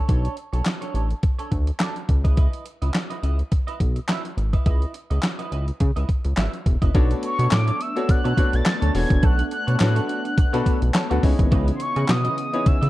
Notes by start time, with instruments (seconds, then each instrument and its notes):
0.08 analog synth bass B1, clean electric guitar D4 A4 C#5, kick, closed hi-hat
0.25 closed hi-hat
0.37 muted clean electric guitar stroke, closed hi-hat
0.53 analog synth bass B1, clean electric guitar D4 A4 C#5, closed hi-hat
0.66 muted clean electric guitar stroke, snare, clap, closed hi-hat
0.81 clean electric guitar D4 A4 C#5, closed hi-hat
0.94 analog synth bass A1, clean electric guitar D4 A4 C#5, closed hi-hat
1.10 muted clean electric guitar stroke, closed hi-hat
1.23 muted clean electric guitar stroke, kick, closed hi-hat
1.39 clean electric guitar D4 A4 C#5, closed hi-hat
1.51 analog synth bass D2, muted clean electric guitar stroke, kick, closed hi-hat
1.67 muted clean electric guitar stroke, closed hi-hat
1.80 clean electric guitar D4 A4 D5, snare, clap, closed hi-hat
1.96 muted clean electric guitar stroke, closed hi-hat
2.08 analog synth bass C#2, muted clean electric guitar stroke, kick, closed hi-hat
2.24 clean electric guitar E4 B4 D#5, kick, closed hi-hat
2.37 clean electric guitar E4 B4 D#5, kick, closed hi-hat
2.53 closed hi-hat
2.66 muted clean electric guitar stroke, closed hi-hat
2.82 analog synth bass C#2, clean electric guitar E4 B4 D#5, closed hi-hat
2.94 muted clean electric guitar stroke, snare, clap, closed hi-hat
3.10 clean electric guitar E4 B4 D#5, closed hi-hat
3.22 analog synth bass C#2, clean electric guitar E4 B4 D#5, closed hi-hat
3.39 muted clean electric guitar stroke, closed hi-hat
3.51 muted clean electric guitar stroke, kick, closed hi-hat
3.67 clean electric guitar E4 B4 D#5, closed hi-hat
3.80 analog synth bass B1, muted clean electric guitar stroke, kick, closed hi-hat
3.96 muted clean electric guitar stroke, closed hi-hat
4.08 clean electric guitar E4 B4 E5, snare, clap, closed hi-hat
4.25 muted clean electric guitar stroke, closed hi-hat
4.37 analog synth bass G#1, muted clean electric guitar stroke, closed hi-hat
4.53 clean electric guitar E4 B4 D#5, kick, closed hi-hat
4.66 analog synth bass C#2, clean electric guitar E4 B4 D#5, kick, closed hi-hat
4.82 closed hi-hat
4.94 muted clean electric guitar stroke, closed hi-hat
5.10 analog synth bass C#2, clean electric guitar E4 B4 D#5, closed hi-hat
5.23 muted clean electric guitar stroke, snare, clap, closed hi-hat
5.39 clean electric guitar E4 B4 D#5, closed hi-hat
5.51 analog synth bass C#2, clean electric guitar E4 B4 D#5, closed hi-hat
5.68 muted clean electric guitar stroke, closed hi-hat
5.80 analog synth bass C#3, muted clean electric guitar stroke, kick, closed hi-hat
5.96 analog synth bass C#2, clean electric guitar E4 B4 D#5, closed hi-hat
6.09 muted clean electric guitar stroke, kick, closed hi-hat
6.25 analog synth bass C#2, muted clean electric guitar stroke, closed hi-hat
6.37 analog synth bass G#1, clean electric guitar E4 B4 E5, snare, clap, closed hi-hat
6.53 muted clean electric guitar stroke, closed hi-hat
6.66 analog synth bass E1, muted clean electric guitar stroke, kick, closed hi-hat
6.82 analog synth bass F#1, clean electric guitar E4 B4 D#5, kick, closed hi-hat
6.94 analog synth bass B1, analog synth pad A3 B3 D4, grand piano B3 D4 F#4 A4 C#5, clean electric guitar D4 A4 C#5, kick, closed hi-hat
7.10 muted clean electric guitar stroke, closed hi-hat
7.23 soft synth lead C#6, muted clean electric guitar stroke, closed hi-hat
7.39 analog synth bass B2, clean electric guitar D4 A4 C#5, closed hi-hat
7.51 analog synth bass A2, soft synth lead D6, snare, clap, closed hi-hat
7.67 clean electric guitar D4 A4 C#5, closed hi-hat
7.80 soft synth lead E6, muted clean electric guitar stroke, closed hi-hat
7.96 grand piano B3 D4 F#4 A4 C#5, muted clean electric guitar stroke, closed hi-hat
8.08 analog synth bass B2, soft synth lead F#6, muted clean electric guitar stroke, kick, closed hi-hat
8.24 analog synth bass B2, clean electric guitar D4 A4 C#5, closed hi-hat
8.37 grand piano B3 D4 F#4 A4 C#5, clean electric guitar D4 A4 C#5, kick, closed hi-hat
8.53 analog synth bass B1, soft synth lead A6, muted clean electric guitar stroke, closed hi-hat
8.66 muted clean electric guitar stroke, snare, clap, closed hi-hat
8.81 analog synth bass D2, clean electric guitar D4 A4 C#5, closed hi-hat
8.94 analog synth bass E1, grand piano B3 D4 F#4 A4 C#5, soft synth lead G#6, muted clean electric guitar stroke, open hi-hat
9.10 analog synth bass F#1, muted clean electric guitar stroke, kick, closed hi-hat
9.23 analog synth bass B1, clean electric guitar D4 A4 C#5, soft synth lead F#6, kick, closed hi-hat
9.39 muted clean electric guitar stroke, closed hi-hat
9.51 soft synth lead F#6, muted clean electric guitar stroke, closed hi-hat
9.67 analog synth bass B2, clean electric guitar D4 A4 C#5, grand piano A4 C#5, closed hi-hat
9.80 analog synth bass A2, grand piano B3 D4 F#4 A4 C#5, soft synth lead F#6, muted clean electric guitar stroke, snare, clap, closed hi-hat
9.95 clean electric guitar D4 A4 C#5, closed hi-hat
10.08 muted clean electric guitar stroke, closed hi-hat
10.25 muted clean electric guitar stroke, closed hi-hat
10.37 analog synth bass B2, muted clean electric guitar stroke, kick, closed hi-hat
10.53 analog synth bass B2, grand piano B3 D4 F#4 A4 B4, clean electric guitar D4 A4 C#5, closed hi-hat
10.66 clean electric guitar D4 A4 C#5, kick, closed hi-hat
10.82 analog synth bass B1, muted clean electric guitar stroke, closed hi-hat
10.94 grand piano A4 C#5 A5, muted clean electric guitar stroke, snare, clap, closed hi-hat
11.10 analog synth bass D2, grand piano B3 D4 F#4 A4 B4 F#5, clean electric guitar D4 A4 C#5, closed hi-hat
11.23 analog synth bass C#2, analog synth pad C#3 E3 C#4, grand piano B3 D#4 E4 G#4 C#5, muted clean electric guitar stroke, kick, open hi-hat
11.39 analog synth bass G#1, muted clean electric guitar stroke, kick, closed hi-hat
11.51 analog synth bass C#2, clean electric guitar E4 B4 D#5, kick, closed hi-hat
11.67 muted clean electric guitar stroke, closed hi-hat
11.75 soft synth lead C6
11.80 soft synth lead C#6, muted clean electric guitar stroke, closed hi-hat
11.96 analog synth bass C#3, clean electric guitar E4 B4 D#5, closed hi-hat
12.09 analog synth bass B2, soft synth lead D#6, muted clean electric guitar stroke, snare, clap, closed hi-hat
12.24 clean electric guitar E4 B4 D#5, closed hi-hat
12.37 muted clean electric guitar stroke, closed hi-hat
12.53 grand piano B3 D#4 E4 G#4 C#5, muted clean electric guitar stroke, closed hi-hat
12.66 analog synth bass C#3, soft synth lead E6, muted clean electric guitar stroke, kick, closed hi-hat
12.81 analog synth bass C#3, clean electric guitar E4 B4 D#5, closed hi-hat